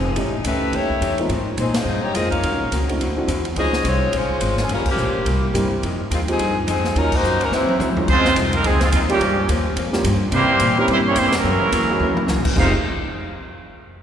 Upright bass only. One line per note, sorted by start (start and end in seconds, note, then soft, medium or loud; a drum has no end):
0.00 0.15 F1 medium
0.16 0.43 A1 medium
0.44 0.72 C#2 medium
0.72 1.00 D#2 medium
1.01 1.29 E2 medium
1.29 1.57 G#2 medium
1.57 1.84 A#2 loud
1.85 2.13 G2 medium
2.14 2.42 F2 medium
2.43 2.51 D#2 medium
2.51 2.61 C#2 medium
2.61 2.70 A#1 medium
2.71 2.99 C#2 medium
3.00 3.27 D2 medium
3.27 3.55 E2 medium
3.56 3.83 C#2 medium
3.84 4.12 C2 medium
4.12 4.28 A#1 medium
4.29 muted upright bass stroke soft
4.41 4.68 G#1 loud
4.69 4.85 G1 medium
4.85 muted upright bass stroke soft
4.96 5.06 A#1 medium
5.06 5.15 G1 medium
5.15 5.25 F1 medium
5.26 5.53 C2 medium
5.54 5.70 G2 loud
5.70 muted upright bass stroke soft
5.82 6.10 F2 medium
6.11 6.38 D#2 medium
6.39 6.66 G2 medium
6.67 6.94 F2 medium
6.95 7.22 D#2 medium
7.23 7.49 F#2 medium
7.50 7.78 E2 medium
7.80 8.07 D2 loud
8.08 8.35 C#2 medium
8.36 8.63 C2 medium
8.64 8.91 C#2 medium
8.92 9.19 D#2 loud
9.20 9.47 G2 medium
9.48 9.75 D#2 loud
9.76 10.03 F2 medium
10.04 10.31 G2 loud
10.32 10.47 C3 loud
10.48 muted upright bass stroke soft
10.59 10.87 A#2 loud
10.88 11.15 G2 medium
11.16 11.43 F2 loud
11.44 11.71 F#2 medium
11.72 11.99 E2 medium
12.00 12.27 D#2 loud
12.28 12.36 C#2 medium
12.36 12.45 A#1 medium
12.46 12.55 F#1 medium
12.56 12.71 F1 loud